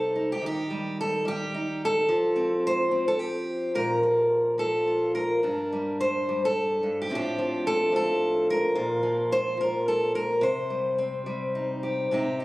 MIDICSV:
0, 0, Header, 1, 2, 480
1, 0, Start_track
1, 0, Tempo, 555042
1, 369, Time_signature, 3, 2, 24, 8
1, 9006, Tempo, 564440
1, 10735, End_track
2, 0, Start_track
2, 0, Title_t, "Steel-string acoustic guitar"
2, 0, Program_c, 0, 25
2, 0, Note_on_c, 0, 48, 63
2, 0, Note_on_c, 0, 55, 50
2, 0, Note_on_c, 0, 63, 44
2, 0, Note_on_c, 0, 69, 90
2, 124, Note_off_c, 0, 63, 0
2, 134, Note_on_c, 0, 63, 41
2, 255, Note_off_c, 0, 69, 0
2, 278, Note_on_c, 0, 67, 79
2, 344, Note_off_c, 0, 63, 0
2, 357, Note_off_c, 0, 48, 0
2, 360, Note_on_c, 0, 51, 66
2, 385, Note_off_c, 0, 67, 0
2, 399, Note_on_c, 0, 67, 93
2, 605, Note_off_c, 0, 55, 0
2, 609, Note_on_c, 0, 55, 58
2, 867, Note_off_c, 0, 67, 0
2, 870, Note_on_c, 0, 69, 91
2, 1079, Note_off_c, 0, 55, 0
2, 1082, Note_on_c, 0, 55, 55
2, 1103, Note_off_c, 0, 69, 0
2, 1107, Note_on_c, 0, 67, 93
2, 1336, Note_on_c, 0, 63, 45
2, 1581, Note_off_c, 0, 67, 0
2, 1600, Note_on_c, 0, 69, 91
2, 1779, Note_off_c, 0, 55, 0
2, 1781, Note_off_c, 0, 51, 0
2, 1786, Note_off_c, 0, 63, 0
2, 1804, Note_on_c, 0, 53, 70
2, 2039, Note_on_c, 0, 60, 61
2, 2304, Note_off_c, 0, 69, 0
2, 2308, Note_on_c, 0, 72, 105
2, 2508, Note_off_c, 0, 60, 0
2, 2518, Note_on_c, 0, 60, 61
2, 2656, Note_off_c, 0, 72, 0
2, 2662, Note_on_c, 0, 69, 88
2, 2760, Note_off_c, 0, 69, 0
2, 2760, Note_on_c, 0, 67, 84
2, 3210, Note_off_c, 0, 60, 0
2, 3241, Note_off_c, 0, 67, 0
2, 3242, Note_on_c, 0, 46, 67
2, 3247, Note_on_c, 0, 70, 100
2, 3476, Note_off_c, 0, 53, 0
2, 3486, Note_on_c, 0, 53, 58
2, 3950, Note_off_c, 0, 53, 0
2, 3960, Note_on_c, 0, 53, 53
2, 3961, Note_off_c, 0, 70, 0
2, 3971, Note_on_c, 0, 69, 88
2, 4217, Note_on_c, 0, 65, 44
2, 4449, Note_off_c, 0, 69, 0
2, 4452, Note_on_c, 0, 70, 85
2, 4663, Note_off_c, 0, 46, 0
2, 4670, Note_off_c, 0, 65, 0
2, 4693, Note_off_c, 0, 53, 0
2, 4696, Note_on_c, 0, 43, 68
2, 4704, Note_on_c, 0, 62, 47
2, 4951, Note_on_c, 0, 55, 56
2, 5184, Note_off_c, 0, 70, 0
2, 5194, Note_on_c, 0, 72, 95
2, 5426, Note_off_c, 0, 55, 0
2, 5437, Note_on_c, 0, 55, 57
2, 5549, Note_off_c, 0, 72, 0
2, 5579, Note_on_c, 0, 69, 87
2, 5897, Note_off_c, 0, 43, 0
2, 5907, Note_on_c, 0, 43, 59
2, 6039, Note_off_c, 0, 69, 0
2, 6067, Note_on_c, 0, 67, 78
2, 6119, Note_off_c, 0, 55, 0
2, 6132, Note_off_c, 0, 43, 0
2, 6135, Note_on_c, 0, 45, 72
2, 6143, Note_on_c, 0, 53, 50
2, 6150, Note_off_c, 0, 62, 0
2, 6150, Note_on_c, 0, 60, 51
2, 6154, Note_on_c, 0, 62, 49
2, 6164, Note_off_c, 0, 67, 0
2, 6185, Note_on_c, 0, 67, 90
2, 6383, Note_off_c, 0, 53, 0
2, 6386, Note_on_c, 0, 53, 60
2, 6629, Note_off_c, 0, 67, 0
2, 6632, Note_on_c, 0, 69, 99
2, 6847, Note_off_c, 0, 53, 0
2, 6851, Note_on_c, 0, 53, 64
2, 6862, Note_off_c, 0, 69, 0
2, 6883, Note_on_c, 0, 69, 97
2, 7347, Note_off_c, 0, 69, 0
2, 7354, Note_on_c, 0, 70, 96
2, 7539, Note_off_c, 0, 45, 0
2, 7546, Note_off_c, 0, 60, 0
2, 7570, Note_on_c, 0, 46, 82
2, 7573, Note_off_c, 0, 62, 0
2, 7576, Note_on_c, 0, 65, 53
2, 7798, Note_off_c, 0, 53, 0
2, 7808, Note_on_c, 0, 53, 61
2, 8057, Note_off_c, 0, 70, 0
2, 8064, Note_on_c, 0, 72, 110
2, 8266, Note_off_c, 0, 53, 0
2, 8277, Note_on_c, 0, 53, 62
2, 8294, Note_off_c, 0, 72, 0
2, 8308, Note_on_c, 0, 70, 91
2, 8536, Note_off_c, 0, 70, 0
2, 8544, Note_on_c, 0, 69, 91
2, 8774, Note_off_c, 0, 69, 0
2, 8779, Note_on_c, 0, 70, 92
2, 8976, Note_off_c, 0, 46, 0
2, 8977, Note_off_c, 0, 65, 0
2, 9000, Note_off_c, 0, 53, 0
2, 9004, Note_on_c, 0, 48, 83
2, 9012, Note_off_c, 0, 70, 0
2, 9021, Note_on_c, 0, 72, 93
2, 9251, Note_on_c, 0, 55, 65
2, 9491, Note_on_c, 0, 60, 56
2, 9717, Note_off_c, 0, 55, 0
2, 9727, Note_on_c, 0, 55, 66
2, 9973, Note_on_c, 0, 63, 47
2, 10207, Note_off_c, 0, 72, 0
2, 10211, Note_on_c, 0, 67, 50
2, 10418, Note_off_c, 0, 55, 0
2, 10420, Note_off_c, 0, 60, 0
2, 10421, Note_off_c, 0, 63, 0
2, 10440, Note_off_c, 0, 48, 0
2, 10451, Note_on_c, 0, 48, 62
2, 10459, Note_on_c, 0, 60, 51
2, 10464, Note_off_c, 0, 67, 0
2, 10468, Note_on_c, 0, 63, 50
2, 10475, Note_on_c, 0, 67, 54
2, 10685, Note_off_c, 0, 63, 0
2, 10696, Note_on_c, 0, 63, 47
2, 10735, Note_off_c, 0, 48, 0
2, 10735, Note_off_c, 0, 60, 0
2, 10735, Note_off_c, 0, 63, 0
2, 10735, Note_off_c, 0, 67, 0
2, 10735, End_track
0, 0, End_of_file